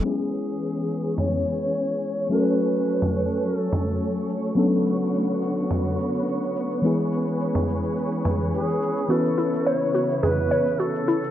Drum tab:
SH |-xxxx-xxx-xxxxxx|xxxxx-xxx-xxxxxx|xxxxx-xxx-xxxxxx|xxxxx-xxxxxxxxxx|
T2 |--------o-------|-----o----o-----|--------o-------|-----o----o-----|

SH |xxxxx-xxx-xxxxxx|
T2 |--------o-------|